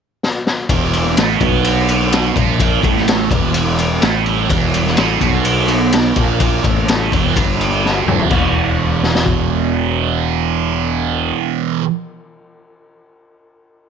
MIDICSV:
0, 0, Header, 1, 4, 480
1, 0, Start_track
1, 0, Key_signature, 1, "minor"
1, 0, Tempo, 475813
1, 699, Time_signature, 4, 2, 24, 8
1, 14014, End_track
2, 0, Start_track
2, 0, Title_t, "Distorted electric guitar"
2, 0, Program_c, 0, 30
2, 703, Note_on_c, 0, 40, 88
2, 710, Note_on_c, 0, 52, 98
2, 1172, Note_off_c, 0, 40, 0
2, 1176, Note_off_c, 0, 52, 0
2, 1178, Note_on_c, 0, 45, 72
2, 1182, Note_on_c, 0, 57, 97
2, 1409, Note_off_c, 0, 45, 0
2, 1412, Note_off_c, 0, 57, 0
2, 1428, Note_on_c, 0, 47, 83
2, 1431, Note_on_c, 0, 59, 98
2, 2371, Note_off_c, 0, 47, 0
2, 2374, Note_off_c, 0, 59, 0
2, 2375, Note_on_c, 0, 46, 82
2, 2386, Note_on_c, 0, 58, 102
2, 2847, Note_off_c, 0, 46, 0
2, 2851, Note_on_c, 0, 45, 81
2, 2852, Note_off_c, 0, 58, 0
2, 2864, Note_on_c, 0, 57, 105
2, 3325, Note_off_c, 0, 45, 0
2, 3329, Note_on_c, 0, 40, 93
2, 3331, Note_off_c, 0, 57, 0
2, 3335, Note_on_c, 0, 52, 114
2, 4044, Note_off_c, 0, 40, 0
2, 4047, Note_off_c, 0, 52, 0
2, 4051, Note_on_c, 0, 45, 81
2, 4056, Note_on_c, 0, 57, 95
2, 4526, Note_off_c, 0, 45, 0
2, 4528, Note_off_c, 0, 57, 0
2, 4532, Note_on_c, 0, 40, 91
2, 4544, Note_on_c, 0, 52, 100
2, 5007, Note_off_c, 0, 40, 0
2, 5013, Note_off_c, 0, 52, 0
2, 5015, Note_on_c, 0, 45, 85
2, 5022, Note_on_c, 0, 57, 90
2, 5244, Note_off_c, 0, 45, 0
2, 5248, Note_on_c, 0, 47, 92
2, 5252, Note_off_c, 0, 57, 0
2, 5258, Note_on_c, 0, 59, 98
2, 6208, Note_off_c, 0, 47, 0
2, 6212, Note_off_c, 0, 59, 0
2, 6220, Note_on_c, 0, 46, 88
2, 6227, Note_on_c, 0, 58, 109
2, 6694, Note_off_c, 0, 46, 0
2, 6697, Note_off_c, 0, 58, 0
2, 6706, Note_on_c, 0, 45, 94
2, 6710, Note_on_c, 0, 57, 94
2, 7176, Note_on_c, 0, 40, 85
2, 7178, Note_off_c, 0, 45, 0
2, 7180, Note_off_c, 0, 57, 0
2, 7187, Note_on_c, 0, 52, 97
2, 7411, Note_off_c, 0, 40, 0
2, 7415, Note_on_c, 0, 43, 99
2, 7418, Note_off_c, 0, 52, 0
2, 7429, Note_on_c, 0, 55, 105
2, 8134, Note_off_c, 0, 43, 0
2, 8141, Note_off_c, 0, 55, 0
2, 8144, Note_on_c, 0, 40, 81
2, 8147, Note_on_c, 0, 52, 97
2, 8354, Note_off_c, 0, 40, 0
2, 8367, Note_on_c, 0, 40, 92
2, 8379, Note_off_c, 0, 52, 0
2, 8390, Note_on_c, 0, 47, 95
2, 8405, Note_on_c, 0, 52, 96
2, 11897, Note_off_c, 0, 40, 0
2, 11921, Note_off_c, 0, 47, 0
2, 11936, Note_off_c, 0, 52, 0
2, 14014, End_track
3, 0, Start_track
3, 0, Title_t, "Fingered electric bass"
3, 0, Program_c, 1, 33
3, 696, Note_on_c, 1, 28, 92
3, 1142, Note_off_c, 1, 28, 0
3, 1180, Note_on_c, 1, 33, 84
3, 1401, Note_off_c, 1, 33, 0
3, 1417, Note_on_c, 1, 35, 95
3, 2334, Note_off_c, 1, 35, 0
3, 2380, Note_on_c, 1, 34, 91
3, 2823, Note_off_c, 1, 34, 0
3, 2862, Note_on_c, 1, 33, 92
3, 3304, Note_off_c, 1, 33, 0
3, 3330, Note_on_c, 1, 28, 99
3, 4012, Note_off_c, 1, 28, 0
3, 4055, Note_on_c, 1, 33, 94
3, 4501, Note_off_c, 1, 33, 0
3, 4535, Note_on_c, 1, 28, 96
3, 4982, Note_off_c, 1, 28, 0
3, 5016, Note_on_c, 1, 33, 92
3, 5240, Note_off_c, 1, 33, 0
3, 5256, Note_on_c, 1, 35, 100
3, 6179, Note_off_c, 1, 35, 0
3, 6218, Note_on_c, 1, 34, 96
3, 6666, Note_off_c, 1, 34, 0
3, 6701, Note_on_c, 1, 33, 89
3, 7149, Note_off_c, 1, 33, 0
3, 7185, Note_on_c, 1, 28, 101
3, 7407, Note_off_c, 1, 28, 0
3, 7427, Note_on_c, 1, 31, 84
3, 8107, Note_off_c, 1, 31, 0
3, 8132, Note_on_c, 1, 28, 88
3, 8362, Note_off_c, 1, 28, 0
3, 8383, Note_on_c, 1, 28, 91
3, 11409, Note_off_c, 1, 28, 0
3, 14014, End_track
4, 0, Start_track
4, 0, Title_t, "Drums"
4, 236, Note_on_c, 9, 38, 68
4, 337, Note_off_c, 9, 38, 0
4, 472, Note_on_c, 9, 38, 87
4, 572, Note_off_c, 9, 38, 0
4, 698, Note_on_c, 9, 51, 95
4, 700, Note_on_c, 9, 36, 98
4, 799, Note_off_c, 9, 51, 0
4, 800, Note_off_c, 9, 36, 0
4, 933, Note_on_c, 9, 64, 75
4, 942, Note_on_c, 9, 51, 67
4, 1034, Note_off_c, 9, 64, 0
4, 1042, Note_off_c, 9, 51, 0
4, 1056, Note_on_c, 9, 63, 79
4, 1157, Note_off_c, 9, 63, 0
4, 1172, Note_on_c, 9, 64, 73
4, 1179, Note_on_c, 9, 51, 102
4, 1190, Note_on_c, 9, 38, 110
4, 1273, Note_off_c, 9, 64, 0
4, 1280, Note_off_c, 9, 51, 0
4, 1291, Note_off_c, 9, 38, 0
4, 1412, Note_on_c, 9, 64, 80
4, 1417, Note_on_c, 9, 51, 74
4, 1419, Note_on_c, 9, 36, 113
4, 1512, Note_off_c, 9, 64, 0
4, 1518, Note_off_c, 9, 51, 0
4, 1520, Note_off_c, 9, 36, 0
4, 1537, Note_on_c, 9, 63, 74
4, 1638, Note_off_c, 9, 63, 0
4, 1659, Note_on_c, 9, 51, 98
4, 1760, Note_off_c, 9, 51, 0
4, 1894, Note_on_c, 9, 63, 76
4, 1901, Note_on_c, 9, 51, 72
4, 1994, Note_off_c, 9, 63, 0
4, 2002, Note_off_c, 9, 51, 0
4, 2142, Note_on_c, 9, 51, 90
4, 2153, Note_on_c, 9, 38, 104
4, 2243, Note_off_c, 9, 51, 0
4, 2254, Note_off_c, 9, 38, 0
4, 2380, Note_on_c, 9, 36, 105
4, 2380, Note_on_c, 9, 64, 81
4, 2385, Note_on_c, 9, 51, 69
4, 2481, Note_off_c, 9, 36, 0
4, 2481, Note_off_c, 9, 64, 0
4, 2486, Note_off_c, 9, 51, 0
4, 2618, Note_on_c, 9, 36, 103
4, 2621, Note_on_c, 9, 51, 96
4, 2719, Note_off_c, 9, 36, 0
4, 2722, Note_off_c, 9, 51, 0
4, 2859, Note_on_c, 9, 36, 97
4, 2859, Note_on_c, 9, 64, 71
4, 2862, Note_on_c, 9, 51, 59
4, 2960, Note_off_c, 9, 36, 0
4, 2960, Note_off_c, 9, 64, 0
4, 2963, Note_off_c, 9, 51, 0
4, 2980, Note_on_c, 9, 63, 78
4, 2998, Note_on_c, 9, 38, 31
4, 3081, Note_off_c, 9, 63, 0
4, 3097, Note_on_c, 9, 64, 70
4, 3099, Note_off_c, 9, 38, 0
4, 3103, Note_on_c, 9, 51, 91
4, 3114, Note_on_c, 9, 38, 105
4, 3198, Note_off_c, 9, 64, 0
4, 3204, Note_off_c, 9, 51, 0
4, 3215, Note_off_c, 9, 38, 0
4, 3335, Note_on_c, 9, 36, 106
4, 3339, Note_on_c, 9, 51, 76
4, 3339, Note_on_c, 9, 64, 74
4, 3436, Note_off_c, 9, 36, 0
4, 3439, Note_off_c, 9, 51, 0
4, 3440, Note_off_c, 9, 64, 0
4, 3462, Note_on_c, 9, 63, 74
4, 3563, Note_off_c, 9, 63, 0
4, 3570, Note_on_c, 9, 51, 96
4, 3671, Note_off_c, 9, 51, 0
4, 3817, Note_on_c, 9, 51, 64
4, 3817, Note_on_c, 9, 63, 76
4, 3917, Note_off_c, 9, 51, 0
4, 3918, Note_off_c, 9, 63, 0
4, 4053, Note_on_c, 9, 51, 91
4, 4064, Note_on_c, 9, 38, 117
4, 4153, Note_off_c, 9, 51, 0
4, 4165, Note_off_c, 9, 38, 0
4, 4296, Note_on_c, 9, 51, 66
4, 4304, Note_on_c, 9, 64, 74
4, 4397, Note_off_c, 9, 51, 0
4, 4405, Note_off_c, 9, 64, 0
4, 4535, Note_on_c, 9, 36, 95
4, 4537, Note_on_c, 9, 51, 91
4, 4636, Note_off_c, 9, 36, 0
4, 4638, Note_off_c, 9, 51, 0
4, 4780, Note_on_c, 9, 51, 70
4, 4780, Note_on_c, 9, 64, 65
4, 4881, Note_off_c, 9, 51, 0
4, 4881, Note_off_c, 9, 64, 0
4, 4901, Note_on_c, 9, 63, 74
4, 4907, Note_on_c, 9, 38, 31
4, 5002, Note_off_c, 9, 63, 0
4, 5008, Note_off_c, 9, 38, 0
4, 5011, Note_on_c, 9, 51, 101
4, 5017, Note_on_c, 9, 64, 66
4, 5022, Note_on_c, 9, 38, 113
4, 5112, Note_off_c, 9, 51, 0
4, 5118, Note_off_c, 9, 64, 0
4, 5123, Note_off_c, 9, 38, 0
4, 5254, Note_on_c, 9, 36, 105
4, 5257, Note_on_c, 9, 51, 78
4, 5262, Note_on_c, 9, 64, 68
4, 5355, Note_off_c, 9, 36, 0
4, 5358, Note_off_c, 9, 51, 0
4, 5363, Note_off_c, 9, 64, 0
4, 5376, Note_on_c, 9, 63, 64
4, 5477, Note_off_c, 9, 63, 0
4, 5494, Note_on_c, 9, 51, 91
4, 5595, Note_off_c, 9, 51, 0
4, 5729, Note_on_c, 9, 51, 71
4, 5730, Note_on_c, 9, 63, 65
4, 5830, Note_off_c, 9, 51, 0
4, 5831, Note_off_c, 9, 63, 0
4, 5976, Note_on_c, 9, 51, 102
4, 5987, Note_on_c, 9, 38, 110
4, 6077, Note_off_c, 9, 51, 0
4, 6088, Note_off_c, 9, 38, 0
4, 6211, Note_on_c, 9, 51, 72
4, 6216, Note_on_c, 9, 36, 103
4, 6221, Note_on_c, 9, 64, 66
4, 6312, Note_off_c, 9, 51, 0
4, 6317, Note_off_c, 9, 36, 0
4, 6322, Note_off_c, 9, 64, 0
4, 6454, Note_on_c, 9, 51, 91
4, 6458, Note_on_c, 9, 36, 101
4, 6555, Note_off_c, 9, 51, 0
4, 6559, Note_off_c, 9, 36, 0
4, 6690, Note_on_c, 9, 63, 60
4, 6698, Note_on_c, 9, 51, 67
4, 6701, Note_on_c, 9, 36, 91
4, 6791, Note_off_c, 9, 63, 0
4, 6799, Note_off_c, 9, 51, 0
4, 6802, Note_off_c, 9, 36, 0
4, 6817, Note_on_c, 9, 63, 70
4, 6918, Note_off_c, 9, 63, 0
4, 6942, Note_on_c, 9, 51, 102
4, 6944, Note_on_c, 9, 64, 66
4, 6953, Note_on_c, 9, 38, 115
4, 7043, Note_off_c, 9, 51, 0
4, 7045, Note_off_c, 9, 64, 0
4, 7054, Note_off_c, 9, 38, 0
4, 7069, Note_on_c, 9, 63, 69
4, 7170, Note_off_c, 9, 63, 0
4, 7182, Note_on_c, 9, 64, 65
4, 7185, Note_on_c, 9, 36, 105
4, 7192, Note_on_c, 9, 51, 80
4, 7283, Note_off_c, 9, 64, 0
4, 7286, Note_off_c, 9, 36, 0
4, 7293, Note_off_c, 9, 51, 0
4, 7304, Note_on_c, 9, 63, 73
4, 7404, Note_off_c, 9, 63, 0
4, 7426, Note_on_c, 9, 36, 104
4, 7429, Note_on_c, 9, 51, 94
4, 7527, Note_off_c, 9, 36, 0
4, 7530, Note_off_c, 9, 51, 0
4, 7668, Note_on_c, 9, 63, 72
4, 7674, Note_on_c, 9, 51, 66
4, 7769, Note_off_c, 9, 63, 0
4, 7775, Note_off_c, 9, 51, 0
4, 7924, Note_on_c, 9, 38, 59
4, 8025, Note_off_c, 9, 38, 0
4, 8149, Note_on_c, 9, 45, 89
4, 8152, Note_on_c, 9, 64, 86
4, 8250, Note_off_c, 9, 45, 0
4, 8253, Note_off_c, 9, 64, 0
4, 8264, Note_on_c, 9, 43, 87
4, 8365, Note_off_c, 9, 43, 0
4, 8377, Note_on_c, 9, 49, 79
4, 8385, Note_on_c, 9, 36, 93
4, 8388, Note_on_c, 9, 63, 86
4, 8478, Note_off_c, 9, 49, 0
4, 8486, Note_off_c, 9, 36, 0
4, 8489, Note_off_c, 9, 63, 0
4, 9113, Note_on_c, 9, 38, 61
4, 9214, Note_off_c, 9, 38, 0
4, 9231, Note_on_c, 9, 38, 73
4, 9332, Note_off_c, 9, 38, 0
4, 9343, Note_on_c, 9, 36, 87
4, 9444, Note_off_c, 9, 36, 0
4, 14014, End_track
0, 0, End_of_file